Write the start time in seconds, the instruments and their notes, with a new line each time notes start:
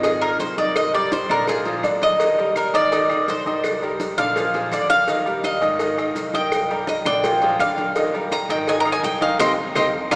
Already playing: upright bass G#1
0.03 upright piano D#3 D#4 D#5, cuban tres G#4, cowbell, high conga, maracas
0.21 upright piano D#3 D#4 D#5, cuban tres A#4, high conga, claves, maracas
0.39 upright bass C2, cuban tres C5, cowbell, high conga, maracas
0.58 upright piano D#3 D#4 D#5, cuban tres D5, high conga, maracas
0.76 cuban tres D#5, cowbell, high conga, claves, maracas
0.94 upright piano G3 G4 A#4, cuban tres D5, high conga, maracas
1.12 cuban tres C5, cowbell, high conga, maracas
1.29 upright bass A#1, upright piano D3 D4 D5, cuban tres A#4, high conga, low conga, claves, maracas
1.47 upright piano F3 F4 G#4, cuban tres G#4, cowbell, high conga, maracas
1.65 upright piano F3 F4 G#4, cowbell, high conga, maracas
1.83 upright bass D#2, upright piano D3 D4 D5, cowbell, high conga, claves, maracas
2.02 cuban tres D#5, cowbell, high conga, maracas
2.19 upright piano D#3 D#4 D#5, cowbell, high conga, maracas
2.38 upright piano G3 G4 A#4, high conga, maracas
2.56 cuban tres A#4, cowbell, high conga, claves, maracas
2.74 upright bass G#1, upright piano D#3 D#4 D#5, cuban tres D5, cowbell, high conga, maracas
2.92 upright piano D#3 D#4 D#5, cowbell, high conga, maracas
3.09 upright piano D#3 D#4 D#5, high conga, claves, maracas
3.28 upright bass C2, cuban tres C5, cowbell, high conga, maracas
3.46 upright piano D#3 D#4 D#5, high conga, maracas
3.64 cowbell, high conga, claves, maracas
3.82 upright piano G3 G4 A#4, high conga, maracas
4.00 cowbell, high conga, maracas
4.17 upright bass A#1, upright piano D3 D4 D5, cuban tres F5, high conga, low conga, claves, maracas
4.36 upright piano F3 F4 G#4, cowbell, high conga, maracas
4.54 upright piano F3 F4 G#4, cowbell, high conga, maracas
4.71 upright bass D#2, upright piano D3 D4 D5, cuban tres D5, cowbell, high conga, claves, maracas
4.90 cuban tres F5, cowbell, high conga
5.08 upright piano D#3 D#4 D#5, cowbell, high conga, maracas
5.26 upright piano G3 G4 A#4, high conga, maracas
5.44 cuban tres D#5, cowbell, high conga, claves, maracas
5.61 upright bass G#1, upright piano D#3 D#4 D#5, cowbell, high conga, maracas
5.79 upright piano D#3 D#4 D#5, cowbell, high conga, maracas
5.98 upright piano D#3 D#4 D#5, high conga, claves, maracas
6.15 upright bass C2, cowbell, high conga, maracas
6.34 upright piano D#3 D#4 D#5, cuban tres G5, high conga, maracas
6.51 cowbell, high conga, claves, maracas
6.69 upright piano G3 G4 A#4, high conga, maracas
6.87 cuban tres D#5, cowbell, high conga, maracas
7.05 upright bass A#1, upright piano D3 D4 D5, cuban tres G5, high conga, low conga, claves, maracas
7.24 upright piano F3 F4 G#4, cowbell, high conga, maracas
7.41 upright piano F3 F4 G#4, cowbell, high conga, maracas
7.59 upright bass D#2, upright piano D3 D4 D5, cuban tres F5, cowbell, high conga, claves, maracas
7.77 cowbell, high conga, maracas
7.95 upright piano D#3 D#4 D#5, cowbell, high conga, maracas
8.13 upright piano G3 G4 A#4, high conga, maracas
8.31 cuban tres A#5, cowbell, high conga, claves, maracas
8.49 upright bass G#1, upright piano D#3 D#4 D#5, cuban tres G5, cowbell, high conga, maracas
8.68 upright piano D#3 D#4 D#5, cuban tres G#5, cowbell, high conga, maracas
8.80 cuban tres A#5
8.85 upright piano D#3 D#4 D#5, high conga, claves, maracas
8.92 cuban tres G#5
9.03 upright bass C2, cuban tres G5, cowbell, high conga, maracas
9.21 upright piano D#3 D#4 D#5, cuban tres F5, high conga, maracas
9.39 upright bass C2, upright piano C4 D#4 G4, cuban tres C5 D#5 G5, cowbell, low conga, claves, maracas
9.75 upright bass C2, upright piano C4 D#4 G4, cuban tres C5 D#5 G5, cowbell, low conga, claves, maracas
10.11 upright bass A#1, upright piano A#3 D4 F4, cuban tres F5 G#5 A#5, cowbell, low conga, claves, maracas